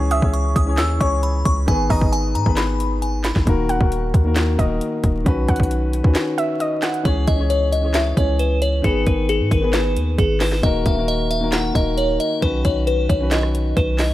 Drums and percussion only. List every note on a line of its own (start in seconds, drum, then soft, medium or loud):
0.11 closed hi-hat medium
0.22 kick medium
0.34 closed hi-hat medium
0.56 kick medium
0.56 closed hi-hat medium
0.78 snare loud
0.78 clap medium
0.78 closed hi-hat medium
1.01 kick medium
1.01 closed hi-hat medium
1.23 closed hi-hat medium
1.45 kick medium
1.45 closed hi-hat medium
1.68 kick loud
1.68 closed hi-hat medium
1.90 kick medium
1.90 open hi-hat medium
2.01 kick loud
2.13 closed hi-hat medium
2.35 closed hi-hat medium
2.46 kick medium
2.57 snare loud
2.57 clap medium
2.57 closed hi-hat medium
2.80 closed hi-hat medium
3.02 closed hi-hat medium
3.24 snare loud
3.24 clap medium
3.24 closed hi-hat medium
3.36 kick medium
3.36 snare medium
3.47 kick loud
3.47 closed hi-hat medium
3.69 closed hi-hat medium
3.81 kick loud
3.92 closed hi-hat medium
4.14 kick medium
4.14 closed hi-hat medium
4.36 snare loud
4.36 clap medium
4.36 closed hi-hat medium
4.59 kick medium
4.59 closed hi-hat medium
4.81 closed hi-hat medium
5.04 kick medium
5.04 closed hi-hat medium
5.26 kick loud
5.26 closed hi-hat medium
5.48 kick medium
5.48 closed hi-hat soft
5.48 open hi-hat medium
5.56 kick loud
5.56 closed hi-hat medium
5.63 closed hi-hat medium
5.71 closed hi-hat medium
5.93 closed hi-hat medium
6.04 kick medium
6.15 snare loud
6.15 clap medium
6.15 closed hi-hat medium
6.38 closed hi-hat medium
6.60 closed hi-hat medium
6.82 snare medium
6.82 clap medium
6.82 closed hi-hat medium
6.94 closed hi-hat soft
7.05 kick loud
7.05 closed hi-hat medium
7.27 kick medium
7.27 closed hi-hat medium
7.50 closed hi-hat medium
7.73 closed hi-hat medium
7.94 snare loud
7.94 clap medium
7.94 closed hi-hat medium
8.17 kick loud
8.17 closed hi-hat medium
8.39 closed hi-hat medium
8.62 closed hi-hat medium
8.84 kick loud
8.84 closed hi-hat medium
9.06 kick medium
9.06 closed hi-hat medium
9.29 closed hi-hat medium
9.51 kick medium
9.51 closed hi-hat medium
9.73 snare loud
9.73 clap medium
9.73 closed hi-hat medium
9.97 closed hi-hat medium
10.18 kick loud
10.18 closed hi-hat medium
10.40 snare loud
10.40 clap medium
10.40 open hi-hat medium
10.52 snare medium
10.63 kick loud
10.63 closed hi-hat medium
10.86 kick medium
10.86 closed hi-hat medium
11.08 closed hi-hat medium
11.31 closed hi-hat medium
11.52 snare loud
11.52 clap medium
11.52 closed hi-hat medium
11.75 kick loud
11.75 closed hi-hat medium
11.98 closed hi-hat medium
12.20 closed hi-hat medium
12.42 kick loud
12.42 closed hi-hat medium
12.65 kick medium
12.65 closed hi-hat medium
12.87 closed hi-hat medium
13.10 kick medium
13.10 closed hi-hat medium
13.31 snare loud
13.31 clap medium
13.31 closed hi-hat medium
13.43 cross-stick medium
13.55 closed hi-hat medium
13.77 kick loud
13.77 closed hi-hat medium
13.99 snare loud
13.99 clap medium
13.99 open hi-hat medium